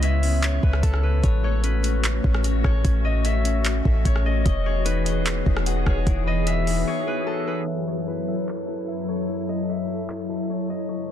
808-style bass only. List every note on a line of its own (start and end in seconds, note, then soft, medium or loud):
0.00 0.59 C#2 loud
0.63 0.82 C#2 loud
0.83 1.22 C#2 loud
1.24 2.20 A1 loud
2.24 2.63 A1 loud
2.64 2.84 A1 loud
2.85 3.81 A1 loud
3.85 4.05 A1 loud
4.05 4.44 A1 loud
4.46 5.42 E1 loud
5.46 5.85 E1 loud
5.86 6.06 E1 loud
6.07 6.84 E1 loud